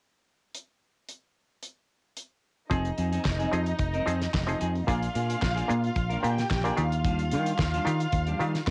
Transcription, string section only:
2.71 D#4 D#5
4.88 F4 F5
6.23 G4 G5
6.79 F4 F5

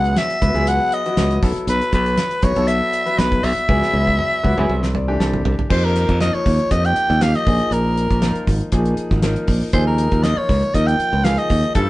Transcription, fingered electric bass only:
Already playing: C#2
0.42 C#2
0.54 C#2
1.17 C#2
1.43 B1
1.56 muted fingered electric bass stroke
1.67 B1
1.93 B1
2.43 B1
2.56 B1
3.18 B1
3.44 B1
3.69 C#2
3.93 C#2
4.44 C#2
4.58 C#2
4.69 C2
5.20 C2
5.45 C2
5.70 F2
6.09 F2
6.34 muted fingered electric bass stroke
6.46 D#2
6.71 F2
6.97 muted fingered electric bass stroke
7.10 D#2
7.47 A#1
7.71 A#1
8.11 A#1
8.47 G#1
8.72 A#1
9.11 G#1
9.48 A#1
9.73 D#2
10.12 D#2
10.37 muted fingered electric bass stroke
10.49 C#2
10.74 D#2
10.99 muted fingered electric bass stroke
11.13 C#2
11.50 D#2
11.75 G2

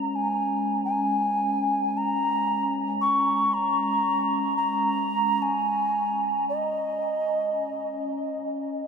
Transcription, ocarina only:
Already playing: A#5
0.15 G#5
0.85 G#5
1.97 A#5
3.01 C#6
3.54 A#5
4.57 A#5
5.42 G#5
6.49 D#5

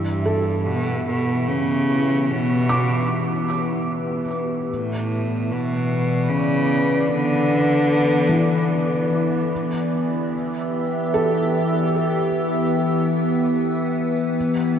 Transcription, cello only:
Already playing: G2
0.66 B2
1.08 B2
1.48 C#3
2.31 B2
4.70 A2
5.51 B2
6.29 C#3
7.08 D3

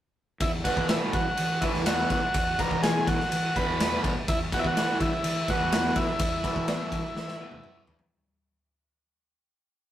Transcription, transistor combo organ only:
0.42 E4
0.64 F#4
0.89 E4
1.14 F#4
1.61 E4
1.86 F#4
2.12 F#4
2.60 A#4
2.83 G#4
3.08 F#4
3.57 B4
4.29 E4
4.54 F#4
4.59 E4
4.67 F#4
5.01 E4
5.50 F#4
5.96 E4

